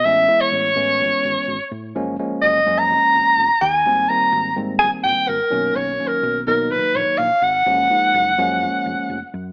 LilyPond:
<<
  \new Staff \with { instrumentName = "Soprano saxophone" } { \time 4/4 \key fis \major \tempo 4 = 126 e''8. cis''2~ cis''8. r8 | r4 dis''8. ais''4.~ ais''16 gis''8~ | gis''8 ais''4 r8 gis''8 g''8 ais'4 | \tuplet 3/2 { cis''4 ais'8~ } ais'16 r16 ais'8 b'8 cis''8 eis''8 fis''8~ |
fis''2.~ fis''8 r8 | }
  \new Staff \with { instrumentName = "Tine electric piano" } { \time 4/4 \key fis \major <e gis b cis'>8 <e gis b e'>4 <e gis b cis'>4. r4 | <eis gis ais cis'>8 <eis gis ais cis'>4 <eis gis ais cis'>4. r4 | <dis g ais bis>8 <dis g ais bis>4 <dis g ais bis>4. r8 <dis fis ais cis'>8~ | <dis fis ais cis'>8 <dis fis ais cis'>4 <dis fis ais dis'>4. r4 |
<eis gis ais cis'>8 <eis gis ais dis'>4 <eis gis ais cis'>4. r4 | }
  \new Staff \with { instrumentName = "Fingered electric bass" } { \clef bass \time 4/4 \key fis \major a,,8 r8 a,,8 a,8 gis,,16 r16 gis,,16 r16 gis,,16 r16 a,8 | fis,,8 r8 fis,,8 fis,8 eis,,16 r16 eis,,16 r16 eis,,16 r16 dis,8 | gis,,8 r8 gis,,8 gis,8 g,,16 r16 g,,16 r16 gis,,16 r16 b,,8 | b,,8 r8 b,,8 b,8 ais,,16 r16 ais,,16 r16 ais,,16 r16 gis,,8 |
fis,,8 r8 fis,,8 fis,8 eis,,16 r16 eis,,16 r16 eis,,16 r16 fis,8 | }
>>